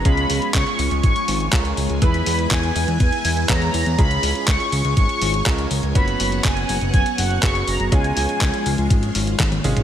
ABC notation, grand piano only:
X:1
M:4/4
L:1/8
Q:1/4=122
K:C#dor
V:1 name="Grand piano"
[G,C^EG]6 [G,CEA]2 | [B,EGB]6 [B,EGc]2 | [G,C^EG]6 [G,CEA]2 | [F,B,CF]6 [F,B,CG]2 |
[G,C^EG]6 z [G,CEG] |]